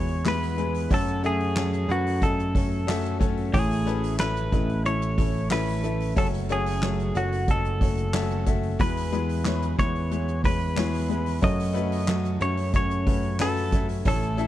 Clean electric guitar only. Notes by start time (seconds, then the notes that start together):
Already playing: C#5
0.28 B4
0.94 A4
1.26 G#4
1.91 F#4
2.23 A4
3.54 G#4
4.20 B4
4.86 C#5
5.52 B4
6.18 A4
6.52 G#4
7.17 F#4
7.51 A4
8.81 B4
9.79 C#5
10.45 B4
11.44 D#5
12.42 C#5
12.76 C#5
13.41 A4
14.08 A4